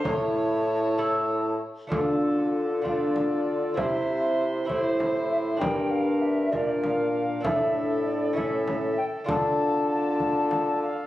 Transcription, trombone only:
\new Staff \with { instrumentName = "Trombone" } { \time 6/8 \key d \minor \tempo 4. = 65 e'2~ e'8 r8 | f'4. f'4. | e'4. e'4. | d'4. d'4. |
d'4. cis'4 r8 | f'2. | }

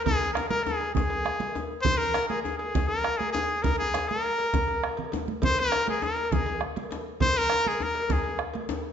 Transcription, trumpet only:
\new Staff \with { instrumentName = "Trumpet" } { \time 12/8 \key aes \major \tempo 4. = 134 aes'4 bes'8 bes'8 aes'4 aes'2~ aes'8 r8 | c''8 bes'4 aes'8 aes'8 aes'4 bes'4 aes'8 aes'4 | bes'8 aes'4 bes'2. r4. | c''8 bes'4 aes'8 bes'4 aes'4 r2 |
c''8 bes'4 aes'8 bes'4 aes'4 r2 | }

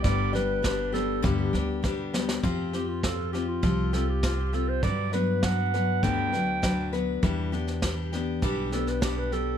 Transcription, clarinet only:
\new Staff \with { instrumentName = "Clarinet" } { \time 4/4 \key g \major \tempo 4 = 100 d''8 b'4 a'8 g'4 r4 | r8 g'16 f'16 a'8 g'16 f'8. a'16 g'8. a'16 c''16 | d''8 b'8 fis''4 g''4. r8 | r2 g'8 a'16 b'16 g'16 b'16 a'8 | }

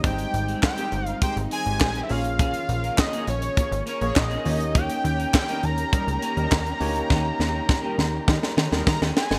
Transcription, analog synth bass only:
\new Staff \with { instrumentName = "Analog synth bass" } { \clef bass \time 4/4 \key ees \mixolydian \tempo 4 = 102 aes,,8 aes,,8 r8 g,,8 r16 aes,,16 r16 aes,,16 bes,,8 bes,,8~ | bes,,8 bes,,8 r8 bes,,8 r16 aes,,16 r16 bes,,16 bes,,8 ees,8~ | ees,8 ees,8 r8 ees,8 r16 des,16 r16 ees,16 ees,8 d,8 | ees,8 ees,8 r8 ees,8 ees16 r16 ees16 ees,16 ees16 ees,16 r16 g,,16 | }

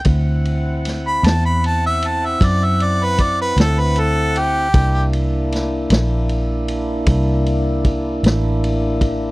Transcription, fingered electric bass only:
\new Staff \with { instrumentName = "Fingered electric bass" } { \clef bass \time 12/8 \key d \dorian \tempo 4. = 51 d,4. e,4. fis,4. d,4. | c,4. bes,,4. c,4. a,,4. | }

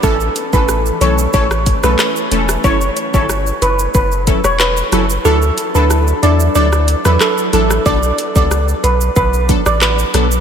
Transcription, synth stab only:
\new Staff \with { instrumentName = "Synth stab" } { \time 4/4 \key b \minor \tempo 4 = 92 <e a cis' a'>16 r8 <e a cis' a'>8. <e a cis' a'>8 <e a cis' a'>16 r8 <e a cis' a'>8. <e a cis' a'>8 | <fis cis' e' a'>16 r8 <fis cis' e' a'>16 r4. <fis cis' e' a'>16 r8. <fis cis' e' a'>16 r16 | <fis d' e' a'>16 r8 <fis d' e' a'>8. <fis d' e' a'>8 <fis d' e' a'>16 r8 <fis d' e' a'>8. <fis d' e' a'>8 | <fis b d' a'>16 r8 <fis b d' a'>16 r4. <fis b d' a'>16 r8. <fis b d' a'>16 r16 | }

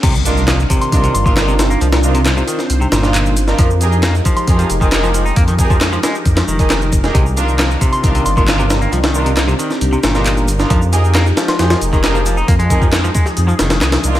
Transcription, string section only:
\new Staff \with { instrumentName = "String section" } { \time 4/4 \key c \minor \tempo 4 = 135 r8 <d' ees' f' bes'>16 r4 r16 <d' ees' f' bes'>16 r8 <d' ees' f' bes'>16 <d' ees' f' bes'>16 r8. | r8 <d' ees' f' bes'>16 r2 <d' ees' f' bes'>16 r8. <d' ees' f' bes'>16 | r8 <ees' g' aes' bes'>16 r4 r16 <ees' g' aes' bes'>16 r8 <ees' g' aes' bes'>16 <ees' g' aes' bes'>16 r8. | r8 <ees' g' aes' bes'>16 r2 <ees' g' aes' bes'>16 r8. <ees' g' aes' bes'>16 |
r8 <d' ees' f' bes'>16 r4 r16 <d' ees' f' bes'>16 r8 <d' ees' f' bes'>16 <d' ees' f' bes'>16 r8. | r8 <d' ees' f' bes'>16 r2 <d' ees' f' bes'>16 r8. <d' ees' f' bes'>16 | r8 <ees' g' aes' bes'>16 r4 r16 <ees' g' aes' bes'>16 r8 <ees' g' aes' bes'>16 <ees' g' aes' bes'>16 r8. | r8 <ees' g' aes' bes'>16 r2 r8. <d' ees' f' bes'>8 | }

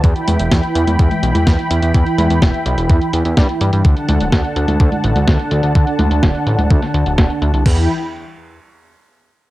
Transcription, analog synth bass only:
\new Staff \with { instrumentName = "Analog synth bass" } { \clef bass \time 4/4 \key d \mixolydian \tempo 4 = 126 e,16 r16 e,16 e,,16 e,16 r16 e,16 e,16 e,16 r16 b,,16 e,16 e,16 r16 e,16 e,16 | e,16 r16 e,16 e,16 e,,16 r16 b,,16 e,,16 e,16 r16 e,16 e,16 g,16 r16 g,16 g,16 | d,16 r16 d,16 d,,16 d,16 r16 d,16 d,16 d,16 r16 a,,16 d,16 d,16 r16 d,16 d,16 | d,16 r16 d,16 d,16 d,,16 r16 a,,16 d,,16 d,16 r16 d,16 d,,16 d,,16 r16 d,16 c,16 |
e,8 r2. r8 | }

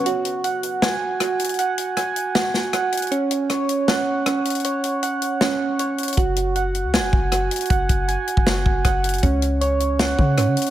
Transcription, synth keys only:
\new Staff \with { instrumentName = "Synth keys" } { \time 4/4 \key cis \phrygian \tempo 4 = 157 fis'4 fis''4 gis''4 fis'4 | fis''4 gis''4 fis'4 fis''4 | cis'4 cis''4 fis''4 cis'4 | cis''4 fis''4 cis'4 cis''4 |
fis'4 fis''4 gis''4 fis'4 | fis''4 gis''4 fis'4 fis''4 | cis'4 cis''4 fis''4 cis'4 | }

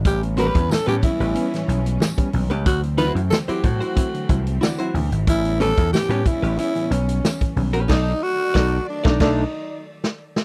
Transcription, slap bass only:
\new Staff \with { instrumentName = "Slap bass" } { \clef bass \time 4/4 \key a \major \tempo 4 = 92 a,,8. e,16 r16 a,16 r16 a,,16 r8 b,,8 r8 b,,16 cis,16 | d,8. fis,16 r8 a,16 r8. c,8 r8 d,16 gis,,16 | a,,8. e,16 r16 a,16 r16 a,,16 r8 b,,8 r8 b,,16 ais,,16 | b,,8 r8 b,,8 r16 b,,16 b,,8 r4. | }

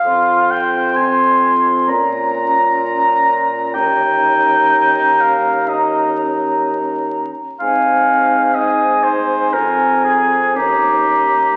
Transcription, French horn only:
\new Staff \with { instrumentName = "French horn" } { \time 4/4 \key ees \mixolydian \tempo 4 = 62 c'4 c'4 des'2 | des'2 des'4. r8 | c'4 c'4 c'4 des'4 | }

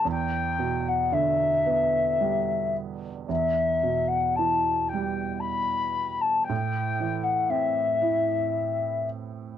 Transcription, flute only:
\new Staff \with { instrumentName = "Flute" } { \time 3/4 \key e \minor \tempo 4 = 57 g''8. fis''16 e''4. r8 | e''8. fis''16 a''8 g''8 b''8. a''16 | g''8. fis''16 e''4. r8 | }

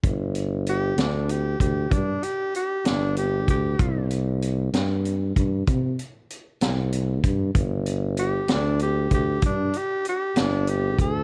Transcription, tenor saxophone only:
\new Staff \with { instrumentName = "Tenor saxophone" } { \time 12/8 \key c \major \tempo 4. = 64 r4 g'8 d'8 g'8 g'8 d'8 g'8 g'8 d'8 g'8 g'8~ | g'8 r1 r4. | r4 g'8 d'8 g'8 g'8 d'8 g'8 g'8 d'8 g'8 a'8 | }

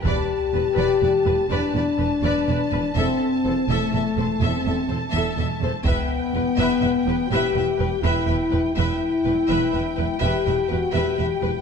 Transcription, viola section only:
\new Staff \with { instrumentName = "Viola section" } { \time 12/8 \key e \minor \tempo 4. = 83 b'8 r8 b'8 b'8 b'8 b'8 b'8 b'8 b'8 b'8 b'8 b'8 | a'8 r8 a'8 a'8 a'8 a'8 a'8 a'8 a'8 a'8 a'8 a'8 | b'8 r8 b'8 b'8 b'8 b'8 b'8 b'8 b'8 b'8 b'8 b'8 | b'8 r8 b'8 b'8 b'8 b'8 b'8 b'8 b'8 b'8 b'8 b'8 | }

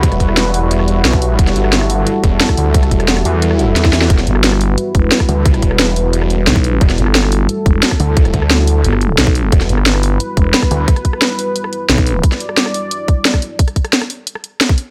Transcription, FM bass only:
\new Staff \with { instrumentName = "FM bass" } { \clef bass \time 4/4 \key e \minor \tempo 4 = 177 r1 | r1 | r1 | r8 g,,4. r8 e,,8 r4 |
r2. b,,4 | r8 g,,4. r8 e,,8 r4 | r2 g,,4 b,,4 | r8 g,,4. r8 e,,8 r4 |
r2. b,,4 | r1 | r1 | }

